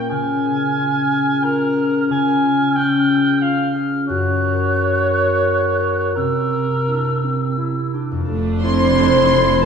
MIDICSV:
0, 0, Header, 1, 11, 480
1, 0, Start_track
1, 0, Tempo, 663717
1, 78, Time_signature, 3, 2, 24, 8
1, 3438, Tempo, 708383
1, 5838, Tempo, 677201
1, 6799, End_track
2, 0, Start_track
2, 0, Title_t, "Flute"
2, 0, Program_c, 0, 73
2, 82, Note_on_c, 0, 89, 55
2, 1486, Note_off_c, 0, 89, 0
2, 1513, Note_on_c, 0, 89, 54
2, 2453, Note_off_c, 0, 89, 0
2, 2484, Note_on_c, 0, 89, 55
2, 2947, Note_off_c, 0, 89, 0
2, 2955, Note_on_c, 0, 90, 64
2, 4361, Note_off_c, 0, 90, 0
2, 4394, Note_on_c, 0, 88, 54
2, 5592, Note_off_c, 0, 88, 0
2, 6080, Note_on_c, 0, 84, 69
2, 6799, Note_off_c, 0, 84, 0
2, 6799, End_track
3, 0, Start_track
3, 0, Title_t, "Violin section"
3, 0, Program_c, 1, 48
3, 6081, Note_on_c, 1, 84, 76
3, 6769, Note_off_c, 1, 84, 0
3, 6799, End_track
4, 0, Start_track
4, 0, Title_t, "Violin section"
4, 0, Program_c, 2, 48
4, 6070, Note_on_c, 2, 84, 82
4, 6764, Note_off_c, 2, 84, 0
4, 6799, End_track
5, 0, Start_track
5, 0, Title_t, "Cor anglais"
5, 0, Program_c, 3, 69
5, 68, Note_on_c, 3, 80, 91
5, 1040, Note_on_c, 3, 70, 92
5, 1051, Note_off_c, 3, 80, 0
5, 1513, Note_off_c, 3, 70, 0
5, 1526, Note_on_c, 3, 80, 84
5, 1993, Note_on_c, 3, 79, 89
5, 2003, Note_off_c, 3, 80, 0
5, 2472, Note_on_c, 3, 77, 74
5, 2483, Note_off_c, 3, 79, 0
5, 2710, Note_off_c, 3, 77, 0
5, 2944, Note_on_c, 3, 73, 93
5, 4356, Note_off_c, 3, 73, 0
5, 4386, Note_on_c, 3, 70, 80
5, 5336, Note_off_c, 3, 70, 0
5, 6799, End_track
6, 0, Start_track
6, 0, Title_t, "French horn section"
6, 0, Program_c, 4, 60
6, 6068, Note_on_c, 4, 72, 92
6, 6763, Note_off_c, 4, 72, 0
6, 6799, End_track
7, 0, Start_track
7, 0, Title_t, "Harp"
7, 0, Program_c, 5, 46
7, 0, Note_on_c, 5, 46, 44
7, 0, Note_on_c, 5, 61, 44
7, 0, Note_on_c, 5, 65, 39
7, 0, Note_on_c, 5, 70, 46
7, 80, Note_on_c, 5, 49, 48
7, 98, Note_off_c, 5, 46, 0
7, 99, Note_off_c, 5, 70, 0
7, 325, Note_on_c, 5, 68, 46
7, 556, Note_off_c, 5, 65, 0
7, 565, Note_on_c, 5, 65, 50
7, 799, Note_off_c, 5, 68, 0
7, 807, Note_on_c, 5, 68, 47
7, 1035, Note_off_c, 5, 65, 0
7, 1043, Note_on_c, 5, 65, 43
7, 1270, Note_off_c, 5, 68, 0
7, 1278, Note_on_c, 5, 68, 48
7, 1509, Note_off_c, 5, 49, 0
7, 1518, Note_on_c, 5, 49, 55
7, 1752, Note_off_c, 5, 65, 0
7, 1761, Note_on_c, 5, 65, 43
7, 1923, Note_off_c, 5, 61, 0
7, 2003, Note_on_c, 5, 61, 49
7, 2231, Note_off_c, 5, 68, 0
7, 2240, Note_on_c, 5, 68, 52
7, 2470, Note_off_c, 5, 65, 0
7, 2478, Note_on_c, 5, 65, 47
7, 2708, Note_off_c, 5, 68, 0
7, 2716, Note_on_c, 5, 68, 49
7, 2959, Note_on_c, 5, 42, 57
7, 2973, Note_off_c, 5, 49, 0
7, 2973, Note_off_c, 5, 68, 0
7, 2974, Note_off_c, 5, 65, 0
7, 3203, Note_on_c, 5, 70, 45
7, 3442, Note_on_c, 5, 66, 46
7, 3668, Note_off_c, 5, 70, 0
7, 3676, Note_on_c, 5, 70, 51
7, 3900, Note_off_c, 5, 66, 0
7, 3908, Note_on_c, 5, 66, 40
7, 4143, Note_off_c, 5, 70, 0
7, 4151, Note_on_c, 5, 70, 45
7, 4396, Note_on_c, 5, 48, 42
7, 4409, Note_off_c, 5, 66, 0
7, 4410, Note_off_c, 5, 42, 0
7, 4410, Note_off_c, 5, 61, 0
7, 4640, Note_on_c, 5, 67, 35
7, 4881, Note_on_c, 5, 64, 47
7, 5111, Note_off_c, 5, 67, 0
7, 5119, Note_on_c, 5, 67, 43
7, 5349, Note_off_c, 5, 64, 0
7, 5357, Note_on_c, 5, 64, 35
7, 5592, Note_off_c, 5, 67, 0
7, 5600, Note_on_c, 5, 67, 43
7, 5716, Note_on_c, 5, 41, 50
7, 5747, Note_on_c, 5, 60, 36
7, 5778, Note_on_c, 5, 53, 38
7, 5808, Note_on_c, 5, 69, 44
7, 5857, Note_off_c, 5, 64, 0
7, 5857, Note_off_c, 5, 67, 0
7, 5861, Note_off_c, 5, 48, 0
7, 5861, Note_off_c, 5, 70, 0
7, 6799, Note_off_c, 5, 41, 0
7, 6799, Note_off_c, 5, 53, 0
7, 6799, Note_off_c, 5, 60, 0
7, 6799, Note_off_c, 5, 69, 0
7, 6799, End_track
8, 0, Start_track
8, 0, Title_t, "Clarinet"
8, 0, Program_c, 6, 71
8, 78, Note_on_c, 6, 61, 58
8, 2959, Note_on_c, 6, 66, 67
8, 2970, Note_off_c, 6, 61, 0
8, 4390, Note_on_c, 6, 60, 51
8, 4400, Note_off_c, 6, 66, 0
8, 4758, Note_off_c, 6, 60, 0
8, 4873, Note_on_c, 6, 62, 55
8, 5120, Note_on_c, 6, 60, 48
8, 5130, Note_off_c, 6, 62, 0
8, 5352, Note_on_c, 6, 64, 58
8, 5362, Note_off_c, 6, 60, 0
8, 5598, Note_on_c, 6, 62, 47
8, 5608, Note_off_c, 6, 64, 0
8, 5837, Note_off_c, 6, 62, 0
8, 6078, Note_on_c, 6, 64, 81
8, 6799, Note_off_c, 6, 64, 0
8, 6799, End_track
9, 0, Start_track
9, 0, Title_t, "Cello section"
9, 0, Program_c, 7, 48
9, 6074, Note_on_c, 7, 60, 80
9, 6766, Note_off_c, 7, 60, 0
9, 6799, End_track
10, 0, Start_track
10, 0, Title_t, "Viola section"
10, 0, Program_c, 8, 48
10, 5836, Note_on_c, 8, 62, 63
10, 5838, Note_on_c, 8, 57, 59
10, 6292, Note_off_c, 8, 57, 0
10, 6316, Note_on_c, 8, 57, 62
10, 6768, Note_off_c, 8, 62, 0
10, 6786, Note_off_c, 8, 57, 0
10, 6799, End_track
11, 0, Start_track
11, 0, Title_t, "Double bass section"
11, 0, Program_c, 10, 48
11, 5837, Note_on_c, 10, 29, 66
11, 6799, Note_off_c, 10, 29, 0
11, 6799, End_track
0, 0, End_of_file